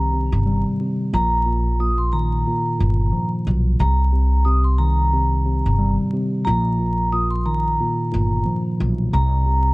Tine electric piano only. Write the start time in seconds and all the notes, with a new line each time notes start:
Already playing: C3 D#3
0.13 C3
0.46 G3
0.80 C3
1.13 A#2
1.46 A#2
1.80 A#2
2.13 D#3
2.47 A#2
2.79 A#2
3.12 F3
3.47 A#2
3.80 C3
4.13 C3
4.46 C3
4.79 D#3
5.13 C3
5.46 C3
5.79 G3
6.13 C3
6.46 A#2
6.79 A#2
7.13 A#2
7.46 D#3
7.80 A#2
8.12 A#2
8.45 F3
8.80 A#2
9.13 C3
9.46 C3